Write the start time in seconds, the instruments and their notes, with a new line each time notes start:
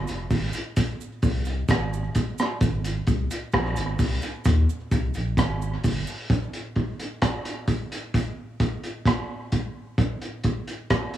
0.07 sub bass F1, closed hi-hat, cabasa
0.30 sub bass G#1, kick, open hi-hat, cabasa
0.53 closed hi-hat, cabasa
0.76 kick, closed hi-hat, cabasa
1.01 cabasa
1.22 sub bass C2, kick, open hi-hat, cabasa
1.45 closed hi-hat, cabasa
1.68 sub bass G#1, kick, cross-stick, closed hi-hat, cabasa
1.93 cabasa
2.15 kick, closed hi-hat, cabasa
2.38 cross-stick, cabasa
2.61 sub bass G#1, kick, closed hi-hat, cabasa
2.84 closed hi-hat, cabasa
3.07 sub bass C2, kick, closed hi-hat, cabasa
3.31 closed hi-hat, cabasa
3.52 sub bass A#1, kick, cross-stick, closed hi-hat, cabasa
3.76 sub bass G#1, closed hi-hat, cabasa
3.99 sub bass C2, kick, open hi-hat, cabasa
4.22 closed hi-hat, cabasa
4.45 sub bass D#2, kick, closed hi-hat, cabasa
4.69 cabasa
4.92 sub bass C2, kick, closed hi-hat, cabasa
5.14 sub bass A#1, closed hi-hat, cabasa
5.37 sub bass G#1, kick, cross-stick, closed hi-hat, cabasa
5.62 cabasa
5.83 sub bass G1, kick, open hi-hat, cabasa
6.07 cabasa
6.30 kick, closed hi-hat
6.53 closed hi-hat
6.75 kick, closed hi-hat
6.99 closed hi-hat
7.22 kick, cross-stick, closed hi-hat
7.45 closed hi-hat
7.67 kick, closed hi-hat
7.92 closed hi-hat
8.14 kick, closed hi-hat
8.60 kick, closed hi-hat
8.84 closed hi-hat
9.06 kick, cross-stick, closed hi-hat
9.52 kick, closed hi-hat
9.98 kick, closed hi-hat
10.22 closed hi-hat
10.44 kick, closed hi-hat
10.68 closed hi-hat
10.90 kick, cross-stick, closed hi-hat
11.14 closed hi-hat